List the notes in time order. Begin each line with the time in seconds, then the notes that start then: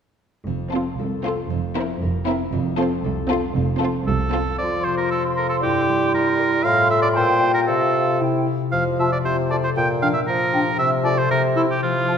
0.46 F1 F2
0.73 C4 F4 A4
0.98 C2 A4
1.25 C4 F4 A4
1.50 F1 F2
1.76 C4 E4 A#4
2.02 F1 F2 A#4
2.27 C4 E4 A#4
2.52 F1 F2
2.78 C4 F4 A4
3.04 C2 A4
3.29 C4 F4 A4
3.54 F1 F2
3.80 C4 F4 A4
4.07 C2 A4
4.32 C4 F4 A4
4.58 F2 F3 F4 D5 C6
4.84 C3 C5
4.97 A#4
5.11 F4 A4
5.37 A4 A#4
5.50 A4
5.62 G2 G3 E4 G4
5.89 G3
6.14 E4 A#4
6.39 A#4
6.64 A2 F4 F5 C6
6.90 F4 A4 E5
7.02 D5
7.15 A#2 C5 G5
7.42 F4 G4
7.54 A#4
7.67 C3 A4 F5
7.94 F4 A4
8.20 C3 E4 G5
8.46 E4 G4
8.72 F2 F3 F5
8.99 C3 F4 E5 A5
9.12 D5
9.24 C3 F4 C5
9.50 F4 A4 D5 A5
9.64 C5
9.76 A#2 G5
10.01 F3 D4 F5 G5
10.13 E5
10.27 F3 F4 A#4
10.53 D4 G4 G5
10.78 C3 E5
11.03 F4 A4 D5 A5
11.18 C5
11.30 C3 A#4
11.56 E4 G4 A4 C6
11.71 G4
11.83 F3 F4
12.08 C4 F4 A5